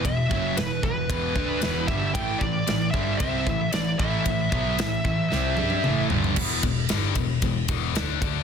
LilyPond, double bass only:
\new Staff \with { instrumentName = "Double bass" } { \clef bass \time 4/4 \key e \minor \tempo 4 = 114 e,,8 fis,,8 e,,8 e,,8 e,,8 d,8 e,,8 g,,8 | a,,8 a,,8 a,,8 g,,8 c,8 a,,8 a,,8 a,,8 | a,,8 b,,8 a,,8 a,,8 c,8 g,8 a,,8 g,,8 | e,,8 e,,8 g,,8 e,,8 e,,8 e,,8 d,8 d,8 | }